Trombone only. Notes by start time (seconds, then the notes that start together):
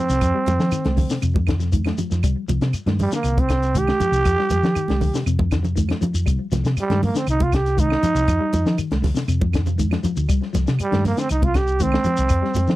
Already playing: C4
3.01 G3
3.15 A#3
3.40 C4
3.78 G4
6.81 G3
7.05 A#3
7.17 C4
7.30 D#4
7.43 F4
7.55 G4
7.80 D#4
10.82 G3
11.07 A#3
11.20 C4
11.32 D#4
11.45 F4
11.57 G4
11.82 C4